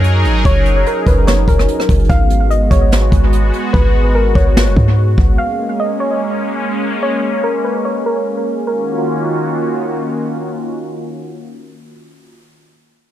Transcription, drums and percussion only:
0.04 closed hi-hat
0.25 closed hi-hat
0.45 kick, closed hi-hat
0.66 closed hi-hat
0.86 closed hi-hat
1.07 kick, closed hi-hat
1.27 snare, closed hi-hat
1.48 kick, closed hi-hat
1.59 cross-stick
1.68 closed hi-hat
1.80 cross-stick
1.89 kick, closed hi-hat
1.94 closed hi-hat
1.99 closed hi-hat
2.05 closed hi-hat
2.10 kick, closed hi-hat
2.30 closed hi-hat
2.51 closed hi-hat
2.71 kick, closed hi-hat
2.92 snare, closed hi-hat
3.12 kick, closed hi-hat
3.33 closed hi-hat
3.54 closed hi-hat
3.74 kick
4.35 kick
4.57 snare
4.76 kick
5.18 kick

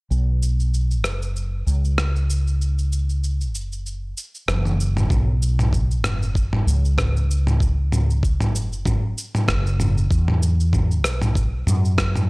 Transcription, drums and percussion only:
0.11 cabasa
0.43 cabasa
0.60 cabasa
0.74 cabasa
0.91 cabasa
1.04 cross-stick, cabasa
1.22 cabasa
1.36 cabasa
1.67 cabasa
1.85 cabasa
1.98 cross-stick, cabasa
2.16 cabasa
2.30 cabasa
2.47 cabasa
2.61 cabasa
2.79 cabasa
2.92 cabasa
3.10 cabasa
3.24 cabasa
3.41 cabasa
3.55 cabasa
3.72 cabasa
3.86 cabasa
4.17 cabasa
4.35 cabasa
4.48 cross-stick, high tom, cabasa
4.65 high tom, cabasa
4.80 cabasa
4.97 mid tom, cabasa
5.10 kick, mid tom, cabasa
5.42 cabasa
5.59 mid tom, cabasa
5.73 kick, cabasa
5.91 cabasa
6.04 cross-stick, mid tom, cabasa
6.22 cabasa
6.35 kick, cabasa
6.53 mid tom
6.68 cabasa
6.85 cabasa
6.98 kick, cross-stick, mid tom, cabasa
7.17 cabasa
7.31 cabasa
7.47 mid tom, cabasa
7.60 kick, cabasa
7.92 mid tom, cabasa
8.10 cabasa
8.23 kick, cabasa
8.41 mid tom, cabasa
8.55 cabasa
8.73 cabasa
8.85 kick, mid tom, cabasa
9.18 cabasa
9.35 mid tom, cabasa
9.48 kick, cross-stick, cabasa
9.67 cabasa
9.80 mid tom, cabasa
9.98 cabasa
10.11 kick, cabasa
10.28 mid tom
10.43 cabasa
10.60 cabasa
10.73 kick, mid tom, cabasa
10.91 cabasa
11.04 cross-stick, cabasa
11.22 mid tom, cabasa
11.35 kick, cabasa
11.67 mid tom, cabasa
11.85 cabasa
11.98 kick, cross-stick, cabasa
12.16 mid tom, cabasa

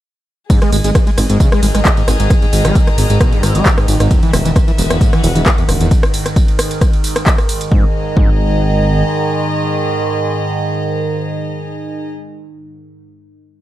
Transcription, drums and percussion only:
0.50 kick, closed hi-hat, ride, tambourine
0.62 cross-stick, ride, tambourine
0.72 open hi-hat, ride, tambourine
0.84 closed hi-hat, ride, tambourine
0.95 kick, cross-stick, closed hi-hat, ride, tambourine
1.07 ride, tambourine
1.18 cross-stick, open hi-hat, ride, tambourine
1.30 closed hi-hat, ride, tambourine
1.40 kick, closed hi-hat, ride, tambourine
1.52 cross-stick, ride, tambourine
1.63 open hi-hat, ride, tambourine
1.75 cross-stick, closed hi-hat, ride, tambourine
1.85 kick, clap, closed hi-hat, ride, tambourine
1.97 ride, tambourine
2.08 cross-stick, open hi-hat, ride, tambourine
2.20 closed hi-hat, ride, tambourine
2.30 kick, cross-stick, closed hi-hat, ride, tambourine
2.42 ride, tambourine
2.53 open hi-hat, ride, tambourine
2.65 cross-stick, closed hi-hat, ride, tambourine
2.75 kick, closed hi-hat, ride, tambourine
2.87 cross-stick, ride, tambourine
2.98 open hi-hat, ride, tambourine
3.10 closed hi-hat, ride, tambourine
3.21 kick, cross-stick, closed hi-hat, ride, tambourine
3.32 ride, tambourine
3.43 cross-stick, open hi-hat, ride, tambourine
3.55 closed hi-hat, ride, tambourine
3.66 kick, clap, closed hi-hat, ride, tambourine
3.78 cross-stick, ride, tambourine
3.88 open hi-hat, ride, tambourine
4.00 cross-stick, closed hi-hat, ride, tambourine
4.11 kick, closed hi-hat, ride, tambourine
4.23 ride, tambourine
4.33 cross-stick, open hi-hat, ride, tambourine
4.45 closed hi-hat, ride, tambourine
4.56 kick, cross-stick, closed hi-hat, ride, tambourine
4.68 ride, tambourine
4.78 open hi-hat, ride, tambourine
4.90 cross-stick, closed hi-hat, ride, tambourine
5.01 kick, closed hi-hat, ride, tambourine
5.13 cross-stick, ride, tambourine
5.24 open hi-hat, ride, tambourine
5.35 closed hi-hat, ride, tambourine
5.46 kick, cross-stick, clap, closed hi-hat, ride, tambourine
5.58 ride, tambourine
5.69 cross-stick, open hi-hat, ride, tambourine
5.81 closed hi-hat, ride, tambourine
5.91 kick, closed hi-hat, ride, tambourine
6.03 cross-stick, ride, tambourine
6.14 open hi-hat, ride, tambourine
6.26 cross-stick, closed hi-hat, ride, tambourine
6.36 kick, closed hi-hat, ride, tambourine
6.48 ride, tambourine
6.59 cross-stick, open hi-hat, ride, tambourine
6.71 closed hi-hat, ride, tambourine
6.81 kick, cross-stick, closed hi-hat, ride, tambourine
6.93 ride, tambourine
7.04 open hi-hat, ride, tambourine
7.16 cross-stick, closed hi-hat, ride, tambourine
7.26 kick, clap, closed hi-hat, ride, tambourine
7.38 cross-stick, ride, tambourine
7.49 open hi-hat, ride, tambourine
7.61 closed hi-hat, ride, tambourine
7.72 kick
8.17 kick

